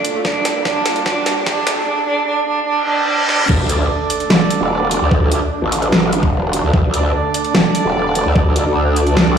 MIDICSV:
0, 0, Header, 1, 10, 480
1, 0, Start_track
1, 0, Key_signature, -1, "minor"
1, 0, Tempo, 405405
1, 294, Time_signature, 4, 2, 24, 8
1, 11107, End_track
2, 0, Start_track
2, 0, Title_t, "Ambient pad"
2, 0, Program_c, 0, 92
2, 0, Note_on_c, 0, 57, 78
2, 0, Note_on_c, 0, 62, 83
2, 0, Note_on_c, 0, 69, 83
2, 0, Note_on_c, 0, 77, 73
2, 0, Note_on_c, 0, 81, 67
2, 293, Note_off_c, 0, 57, 0
2, 293, Note_off_c, 0, 69, 0
2, 293, Note_off_c, 0, 81, 0
2, 683, Note_on_c, 0, 67, 74
2, 2213, Note_off_c, 0, 67, 0
2, 2213, Note_off_c, 0, 77, 0
2, 2214, Note_off_c, 0, 62, 0
2, 4272, Note_on_c, 0, 69, 85
2, 4309, Note_on_c, 0, 81, 90
2, 4881, Note_on_c, 0, 86, 85
2, 11107, Note_off_c, 0, 69, 0
2, 11107, Note_off_c, 0, 81, 0
2, 11107, Note_off_c, 0, 86, 0
2, 11107, End_track
3, 0, Start_track
3, 0, Title_t, "Brass ensemble"
3, 0, Program_c, 1, 61
3, 4373, Note_on_c, 1, 62, 84
3, 4373, Note_on_c, 1, 69, 75
3, 4373, Note_on_c, 1, 74, 93
3, 4465, Note_off_c, 1, 62, 0
3, 4465, Note_off_c, 1, 69, 0
3, 4465, Note_off_c, 1, 74, 0
3, 4494, Note_on_c, 1, 62, 90
3, 4494, Note_on_c, 1, 69, 81
3, 4494, Note_on_c, 1, 74, 96
3, 6265, Note_off_c, 1, 62, 0
3, 6265, Note_off_c, 1, 69, 0
3, 6265, Note_off_c, 1, 74, 0
3, 6293, Note_on_c, 1, 69, 73
3, 6294, Note_on_c, 1, 62, 84
3, 6294, Note_on_c, 1, 74, 86
3, 6386, Note_off_c, 1, 62, 0
3, 6386, Note_off_c, 1, 69, 0
3, 6386, Note_off_c, 1, 74, 0
3, 8214, Note_on_c, 1, 62, 82
3, 8214, Note_on_c, 1, 69, 78
3, 8214, Note_on_c, 1, 74, 91
3, 8306, Note_off_c, 1, 62, 0
3, 8306, Note_off_c, 1, 69, 0
3, 8306, Note_off_c, 1, 74, 0
3, 8334, Note_on_c, 1, 62, 90
3, 8335, Note_on_c, 1, 69, 80
3, 8335, Note_on_c, 1, 74, 98
3, 10105, Note_off_c, 1, 62, 0
3, 10105, Note_off_c, 1, 69, 0
3, 10105, Note_off_c, 1, 74, 0
3, 10133, Note_on_c, 1, 62, 81
3, 10133, Note_on_c, 1, 69, 78
3, 10133, Note_on_c, 1, 74, 86
3, 10225, Note_off_c, 1, 62, 0
3, 10225, Note_off_c, 1, 69, 0
3, 10225, Note_off_c, 1, 74, 0
3, 10254, Note_on_c, 1, 62, 90
3, 10254, Note_on_c, 1, 69, 79
3, 10254, Note_on_c, 1, 74, 95
3, 11107, Note_off_c, 1, 62, 0
3, 11107, Note_off_c, 1, 69, 0
3, 11107, Note_off_c, 1, 74, 0
3, 11107, End_track
4, 0, Start_track
4, 0, Title_t, "Cello"
4, 0, Program_c, 2, 42
4, 173, Note_on_c, 2, 57, 91
4, 274, Note_off_c, 2, 57, 0
4, 292, Note_on_c, 2, 62, 97
4, 686, Note_off_c, 2, 62, 0
4, 773, Note_on_c, 2, 62, 99
4, 1167, Note_off_c, 2, 62, 0
4, 1252, Note_on_c, 2, 62, 105
4, 1646, Note_off_c, 2, 62, 0
4, 1731, Note_on_c, 2, 62, 101
4, 2126, Note_off_c, 2, 62, 0
4, 2211, Note_on_c, 2, 62, 100
4, 2433, Note_off_c, 2, 62, 0
4, 2452, Note_on_c, 2, 62, 103
4, 2674, Note_off_c, 2, 62, 0
4, 2692, Note_on_c, 2, 62, 102
4, 2914, Note_off_c, 2, 62, 0
4, 2932, Note_on_c, 2, 62, 104
4, 3154, Note_off_c, 2, 62, 0
4, 3173, Note_on_c, 2, 62, 106
4, 3394, Note_off_c, 2, 62, 0
4, 3412, Note_on_c, 2, 62, 106
4, 3634, Note_off_c, 2, 62, 0
4, 3653, Note_on_c, 2, 62, 105
4, 3874, Note_off_c, 2, 62, 0
4, 3893, Note_on_c, 2, 62, 108
4, 4115, Note_off_c, 2, 62, 0
4, 11107, End_track
5, 0, Start_track
5, 0, Title_t, "Supersaw synth"
5, 0, Program_c, 3, 81
5, 0, Note_on_c, 3, 45, 81
5, 0, Note_on_c, 3, 57, 76
5, 0, Note_on_c, 3, 62, 87
5, 0, Note_on_c, 3, 65, 90
5, 246, Note_off_c, 3, 62, 0
5, 255, Note_off_c, 3, 45, 0
5, 255, Note_off_c, 3, 57, 0
5, 293, Note_on_c, 3, 43, 82
5, 293, Note_on_c, 3, 55, 74
5, 293, Note_on_c, 3, 58, 70
5, 2166, Note_off_c, 3, 65, 0
5, 2194, Note_off_c, 3, 43, 0
5, 2194, Note_off_c, 3, 55, 0
5, 2194, Note_off_c, 3, 58, 0
5, 4133, Note_on_c, 3, 50, 80
5, 4134, Note_on_c, 3, 57, 74
5, 4134, Note_on_c, 3, 62, 88
5, 11107, Note_off_c, 3, 50, 0
5, 11107, Note_off_c, 3, 57, 0
5, 11107, Note_off_c, 3, 62, 0
5, 11107, End_track
6, 0, Start_track
6, 0, Title_t, "Wobble bass"
6, 0, Program_c, 4, 39
6, 4133, Note_on_c, 4, 38, 98
6, 4595, Note_off_c, 4, 38, 0
6, 5093, Note_on_c, 4, 28, 99
6, 5195, Note_off_c, 4, 28, 0
6, 5454, Note_on_c, 4, 28, 97
6, 5915, Note_off_c, 4, 28, 0
6, 5935, Note_on_c, 4, 38, 100
6, 6395, Note_off_c, 4, 38, 0
6, 6654, Note_on_c, 4, 33, 101
6, 7355, Note_off_c, 4, 33, 0
6, 7375, Note_on_c, 4, 28, 97
6, 7835, Note_off_c, 4, 28, 0
6, 7855, Note_on_c, 4, 38, 104
6, 7955, Note_off_c, 4, 38, 0
6, 7973, Note_on_c, 4, 38, 101
6, 8434, Note_off_c, 4, 38, 0
6, 8933, Note_on_c, 4, 28, 97
6, 9035, Note_off_c, 4, 28, 0
6, 9294, Note_on_c, 4, 28, 98
6, 9755, Note_off_c, 4, 28, 0
6, 9774, Note_on_c, 4, 38, 102
6, 10235, Note_off_c, 4, 38, 0
6, 10254, Note_on_c, 4, 38, 97
6, 10751, Note_off_c, 4, 38, 0
6, 10751, Note_on_c, 4, 37, 97
6, 10955, Note_off_c, 4, 37, 0
6, 10974, Note_on_c, 4, 36, 102
6, 11107, Note_off_c, 4, 36, 0
6, 11107, End_track
7, 0, Start_track
7, 0, Title_t, "Reverse cymbal"
7, 0, Program_c, 5, 119
7, 3173, Note_on_c, 5, 60, 80
7, 4133, Note_off_c, 5, 60, 0
7, 11107, End_track
8, 0, Start_track
8, 0, Title_t, "Riser"
8, 0, Program_c, 6, 103
8, 0, Note_on_c, 6, 60, 78
8, 2214, Note_off_c, 6, 60, 0
8, 11107, End_track
9, 0, Start_track
9, 0, Title_t, "Sub drop"
9, 0, Program_c, 7, 103
9, 4134, Note_on_c, 7, 60, 77
9, 6054, Note_off_c, 7, 60, 0
9, 11107, End_track
10, 0, Start_track
10, 0, Title_t, "Drums"
10, 54, Note_on_c, 9, 42, 82
10, 173, Note_off_c, 9, 42, 0
10, 293, Note_on_c, 9, 36, 100
10, 294, Note_on_c, 9, 38, 79
10, 411, Note_off_c, 9, 36, 0
10, 412, Note_off_c, 9, 38, 0
10, 534, Note_on_c, 9, 38, 78
10, 534, Note_on_c, 9, 42, 78
10, 652, Note_off_c, 9, 38, 0
10, 652, Note_off_c, 9, 42, 0
10, 773, Note_on_c, 9, 36, 101
10, 773, Note_on_c, 9, 38, 77
10, 891, Note_off_c, 9, 36, 0
10, 892, Note_off_c, 9, 38, 0
10, 1013, Note_on_c, 9, 38, 83
10, 1013, Note_on_c, 9, 42, 81
10, 1131, Note_off_c, 9, 38, 0
10, 1131, Note_off_c, 9, 42, 0
10, 1135, Note_on_c, 9, 42, 37
10, 1253, Note_off_c, 9, 42, 0
10, 1253, Note_on_c, 9, 36, 97
10, 1254, Note_on_c, 9, 38, 83
10, 1371, Note_off_c, 9, 36, 0
10, 1372, Note_off_c, 9, 38, 0
10, 1493, Note_on_c, 9, 38, 84
10, 1493, Note_on_c, 9, 42, 76
10, 1612, Note_off_c, 9, 38, 0
10, 1612, Note_off_c, 9, 42, 0
10, 1733, Note_on_c, 9, 36, 99
10, 1733, Note_on_c, 9, 38, 86
10, 1852, Note_off_c, 9, 36, 0
10, 1852, Note_off_c, 9, 38, 0
10, 1973, Note_on_c, 9, 38, 96
10, 1973, Note_on_c, 9, 42, 87
10, 2092, Note_off_c, 9, 38, 0
10, 2092, Note_off_c, 9, 42, 0
10, 3893, Note_on_c, 9, 38, 68
10, 4012, Note_off_c, 9, 38, 0
10, 4015, Note_on_c, 9, 47, 77
10, 4133, Note_off_c, 9, 47, 0
10, 4134, Note_on_c, 9, 36, 116
10, 4134, Note_on_c, 9, 49, 105
10, 4252, Note_off_c, 9, 36, 0
10, 4252, Note_off_c, 9, 49, 0
10, 4374, Note_on_c, 9, 42, 81
10, 4492, Note_off_c, 9, 42, 0
10, 4854, Note_on_c, 9, 42, 82
10, 4973, Note_off_c, 9, 42, 0
10, 4975, Note_on_c, 9, 42, 40
10, 5093, Note_on_c, 9, 38, 125
10, 5094, Note_off_c, 9, 42, 0
10, 5212, Note_off_c, 9, 38, 0
10, 5334, Note_on_c, 9, 42, 85
10, 5452, Note_off_c, 9, 42, 0
10, 5814, Note_on_c, 9, 42, 87
10, 5932, Note_off_c, 9, 42, 0
10, 6054, Note_on_c, 9, 36, 122
10, 6172, Note_off_c, 9, 36, 0
10, 6294, Note_on_c, 9, 42, 88
10, 6412, Note_off_c, 9, 42, 0
10, 6774, Note_on_c, 9, 42, 86
10, 6892, Note_off_c, 9, 42, 0
10, 6895, Note_on_c, 9, 42, 37
10, 7013, Note_off_c, 9, 42, 0
10, 7013, Note_on_c, 9, 38, 124
10, 7132, Note_off_c, 9, 38, 0
10, 7253, Note_on_c, 9, 42, 80
10, 7372, Note_off_c, 9, 42, 0
10, 7375, Note_on_c, 9, 36, 115
10, 7493, Note_off_c, 9, 36, 0
10, 7734, Note_on_c, 9, 42, 91
10, 7852, Note_off_c, 9, 42, 0
10, 7974, Note_on_c, 9, 36, 127
10, 8092, Note_off_c, 9, 36, 0
10, 8214, Note_on_c, 9, 42, 84
10, 8332, Note_off_c, 9, 42, 0
10, 8694, Note_on_c, 9, 42, 84
10, 8813, Note_off_c, 9, 42, 0
10, 8815, Note_on_c, 9, 42, 37
10, 8934, Note_off_c, 9, 42, 0
10, 8934, Note_on_c, 9, 38, 127
10, 9053, Note_off_c, 9, 38, 0
10, 9174, Note_on_c, 9, 42, 77
10, 9292, Note_off_c, 9, 42, 0
10, 9654, Note_on_c, 9, 42, 88
10, 9772, Note_off_c, 9, 42, 0
10, 9894, Note_on_c, 9, 36, 124
10, 10012, Note_off_c, 9, 36, 0
10, 10134, Note_on_c, 9, 42, 80
10, 10252, Note_off_c, 9, 42, 0
10, 10613, Note_on_c, 9, 42, 81
10, 10732, Note_off_c, 9, 42, 0
10, 10735, Note_on_c, 9, 42, 37
10, 10853, Note_off_c, 9, 42, 0
10, 10853, Note_on_c, 9, 38, 127
10, 10971, Note_off_c, 9, 38, 0
10, 11107, End_track
0, 0, End_of_file